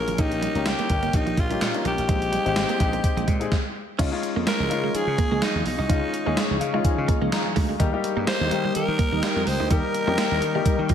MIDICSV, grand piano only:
0, 0, Header, 1, 2, 480
1, 0, Start_track
1, 0, Tempo, 476190
1, 184, Time_signature, 4, 2, 24, 8
1, 11032, End_track
2, 0, Start_track
2, 0, Title_t, "Grand piano"
2, 0, Program_c, 0, 0
2, 0, Control_c, 0, 64, 127
2, 0, Note_on_c, 0, 58, 67
2, 0, Note_on_c, 0, 61, 64
2, 0, Note_on_c, 0, 65, 60
2, 0, Note_on_c, 0, 68, 76
2, 101, Note_off_c, 0, 61, 0
2, 103, Note_off_c, 0, 65, 0
2, 105, Note_off_c, 0, 68, 0
2, 188, Note_off_c, 0, 58, 0
2, 188, Note_on_c, 0, 58, 72
2, 192, Note_on_c, 0, 61, 64
2, 195, Note_on_c, 0, 63, 65
2, 199, Control_c, 0, 64, 0
2, 200, Note_on_c, 0, 67, 76
2, 354, Control_c, 0, 64, 127
2, 453, Note_off_c, 0, 58, 0
2, 455, Note_off_c, 0, 61, 0
2, 456, Note_off_c, 0, 63, 0
2, 459, Note_off_c, 0, 67, 0
2, 558, Note_on_c, 0, 58, 70
2, 563, Note_on_c, 0, 61, 64
2, 566, Note_on_c, 0, 63, 63
2, 572, Note_on_c, 0, 67, 76
2, 819, Note_off_c, 0, 58, 0
2, 822, Note_off_c, 0, 61, 0
2, 823, Note_off_c, 0, 63, 0
2, 826, Note_off_c, 0, 67, 0
2, 902, Note_on_c, 0, 58, 71
2, 908, Note_on_c, 0, 61, 61
2, 912, Note_on_c, 0, 63, 66
2, 914, Note_on_c, 0, 67, 78
2, 1347, Note_off_c, 0, 58, 0
2, 1350, Note_off_c, 0, 61, 0
2, 1353, Note_off_c, 0, 63, 0
2, 1354, Note_off_c, 0, 67, 0
2, 1515, Note_on_c, 0, 58, 72
2, 1519, Note_on_c, 0, 61, 61
2, 1523, Note_on_c, 0, 63, 62
2, 1528, Note_on_c, 0, 67, 76
2, 1685, Note_off_c, 0, 58, 0
2, 1687, Note_off_c, 0, 61, 0
2, 1689, Note_off_c, 0, 63, 0
2, 1692, Note_off_c, 0, 67, 0
2, 1750, Note_on_c, 0, 58, 69
2, 1753, Note_on_c, 0, 61, 60
2, 1759, Note_on_c, 0, 63, 59
2, 1761, Note_on_c, 0, 70, 73
2, 2015, Note_off_c, 0, 58, 0
2, 2017, Note_off_c, 0, 61, 0
2, 2019, Note_off_c, 0, 63, 0
2, 2020, Note_off_c, 0, 70, 0
2, 2098, Note_on_c, 0, 56, 70
2, 2102, Note_on_c, 0, 60, 68
2, 2106, Note_on_c, 0, 63, 64
2, 2110, Note_on_c, 0, 67, 74
2, 2117, Control_c, 0, 64, 0
2, 2282, Control_c, 0, 64, 127
2, 2368, Note_off_c, 0, 56, 0
2, 2370, Note_off_c, 0, 60, 0
2, 2372, Note_off_c, 0, 63, 0
2, 2374, Note_off_c, 0, 67, 0
2, 2470, Note_on_c, 0, 56, 81
2, 2473, Note_on_c, 0, 60, 78
2, 2478, Note_on_c, 0, 63, 71
2, 2481, Note_on_c, 0, 67, 94
2, 2735, Note_off_c, 0, 56, 0
2, 2736, Note_off_c, 0, 60, 0
2, 2739, Note_off_c, 0, 63, 0
2, 2740, Note_off_c, 0, 67, 0
2, 2818, Note_on_c, 0, 56, 84
2, 2823, Note_on_c, 0, 60, 77
2, 2827, Note_on_c, 0, 63, 74
2, 2830, Note_on_c, 0, 67, 93
2, 3266, Note_off_c, 0, 56, 0
2, 3268, Note_off_c, 0, 60, 0
2, 3270, Note_off_c, 0, 63, 0
2, 3271, Note_off_c, 0, 67, 0
2, 3427, Note_on_c, 0, 56, 79
2, 3432, Note_on_c, 0, 60, 76
2, 3435, Note_on_c, 0, 63, 74
2, 3440, Note_on_c, 0, 68, 87
2, 3540, Note_off_c, 0, 56, 0
2, 3542, Note_off_c, 0, 60, 0
2, 3544, Note_off_c, 0, 63, 0
2, 3546, Note_off_c, 0, 68, 0
2, 3556, Control_c, 0, 64, 0
2, 4015, Note_on_c, 0, 56, 85
2, 4020, Note_on_c, 0, 61, 77
2, 4024, Note_on_c, 0, 63, 79
2, 4026, Note_on_c, 0, 65, 99
2, 4117, Note_off_c, 0, 56, 0
2, 4119, Note_off_c, 0, 61, 0
2, 4121, Note_off_c, 0, 63, 0
2, 4122, Note_off_c, 0, 65, 0
2, 4147, Note_on_c, 0, 56, 85
2, 4150, Note_on_c, 0, 61, 76
2, 4155, Note_on_c, 0, 63, 76
2, 4159, Note_on_c, 0, 65, 91
2, 4230, Control_c, 0, 64, 127
2, 4588, Note_off_c, 0, 56, 0
2, 4589, Note_off_c, 0, 61, 0
2, 4592, Note_off_c, 0, 63, 0
2, 4594, Note_off_c, 0, 65, 0
2, 4735, Note_on_c, 0, 56, 71
2, 4737, Note_on_c, 0, 61, 66
2, 4741, Note_on_c, 0, 63, 64
2, 4747, Note_on_c, 0, 65, 80
2, 5446, Note_off_c, 0, 56, 0
2, 5447, Note_off_c, 0, 61, 0
2, 5449, Note_off_c, 0, 63, 0
2, 5451, Note_off_c, 0, 65, 0
2, 5938, Note_on_c, 0, 56, 73
2, 5941, Note_on_c, 0, 61, 67
2, 5944, Note_on_c, 0, 63, 69
2, 5950, Note_on_c, 0, 65, 79
2, 6208, Note_off_c, 0, 56, 0
2, 6209, Note_off_c, 0, 61, 0
2, 6211, Note_off_c, 0, 63, 0
2, 6214, Note_off_c, 0, 65, 0
2, 6309, Note_on_c, 0, 56, 85
2, 6311, Note_on_c, 0, 61, 77
2, 6317, Note_on_c, 0, 63, 75
2, 6320, Note_on_c, 0, 68, 91
2, 6654, Note_off_c, 0, 56, 0
2, 6655, Note_off_c, 0, 61, 0
2, 6657, Note_on_c, 0, 77, 71
2, 6658, Note_off_c, 0, 63, 0
2, 6659, Note_off_c, 0, 68, 0
2, 6786, Note_on_c, 0, 56, 83
2, 6793, Note_on_c, 0, 61, 74
2, 6797, Note_on_c, 0, 63, 77
2, 6800, Note_on_c, 0, 65, 93
2, 6884, Note_off_c, 0, 77, 0
2, 6903, Note_on_c, 0, 80, 75
2, 7350, Note_off_c, 0, 80, 0
2, 7384, Note_on_c, 0, 82, 73
2, 7494, Note_off_c, 0, 56, 0
2, 7497, Note_off_c, 0, 61, 0
2, 7499, Note_off_c, 0, 63, 0
2, 7501, Note_off_c, 0, 65, 0
2, 7831, Note_off_c, 0, 82, 0
2, 7857, Note_on_c, 0, 55, 89
2, 7861, Note_on_c, 0, 58, 80
2, 7864, Note_on_c, 0, 63, 82
2, 7867, Note_on_c, 0, 67, 93
2, 7878, Control_c, 0, 64, 0
2, 7958, Note_off_c, 0, 55, 0
2, 7959, Note_off_c, 0, 58, 0
2, 7961, Note_off_c, 0, 63, 0
2, 7963, Note_off_c, 0, 67, 0
2, 7990, Note_on_c, 0, 55, 88
2, 7993, Note_on_c, 0, 58, 79
2, 7998, Note_on_c, 0, 63, 84
2, 8002, Note_on_c, 0, 67, 96
2, 8073, Control_c, 0, 64, 127
2, 8429, Note_off_c, 0, 55, 0
2, 8431, Note_off_c, 0, 58, 0
2, 8434, Note_off_c, 0, 63, 0
2, 8435, Note_off_c, 0, 67, 0
2, 8578, Note_on_c, 0, 55, 74
2, 8581, Note_on_c, 0, 58, 71
2, 8586, Note_on_c, 0, 63, 68
2, 8589, Note_on_c, 0, 67, 80
2, 9287, Note_off_c, 0, 55, 0
2, 9289, Note_off_c, 0, 58, 0
2, 9291, Note_off_c, 0, 63, 0
2, 9293, Note_off_c, 0, 67, 0
2, 9779, Note_on_c, 0, 55, 75
2, 9785, Note_on_c, 0, 58, 72
2, 9789, Note_on_c, 0, 63, 67
2, 9793, Note_on_c, 0, 67, 84
2, 10048, Note_off_c, 0, 55, 0
2, 10051, Note_off_c, 0, 58, 0
2, 10053, Note_off_c, 0, 63, 0
2, 10055, Note_off_c, 0, 67, 0
2, 10148, Note_on_c, 0, 55, 74
2, 10153, Note_on_c, 0, 58, 69
2, 10156, Note_on_c, 0, 63, 66
2, 10160, Note_on_c, 0, 67, 82
2, 10493, Note_off_c, 0, 55, 0
2, 10496, Note_off_c, 0, 58, 0
2, 10497, Note_off_c, 0, 63, 0
2, 10499, Note_off_c, 0, 67, 0
2, 10631, Note_on_c, 0, 55, 89
2, 10634, Note_on_c, 0, 58, 82
2, 10639, Note_on_c, 0, 63, 79
2, 10642, Note_on_c, 0, 67, 90
2, 11032, Note_off_c, 0, 55, 0
2, 11032, Note_off_c, 0, 58, 0
2, 11032, Note_off_c, 0, 63, 0
2, 11032, Note_off_c, 0, 67, 0
2, 11032, End_track
0, 0, End_of_file